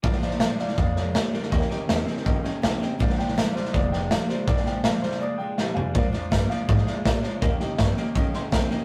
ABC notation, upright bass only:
X:1
M:4/4
L:1/8
Q:1/4=163
K:Bbmix
V:1 name="Upright bass" clef=bass
B,,,3 z F,,3 z | E,, z E,, z _D,, z C,, z | B,,,3 z F,,,3 z | B,,,3 z4 z |
B,, z G,, z A,, z B,, z | E,, z G,, z E,, z C,, z |]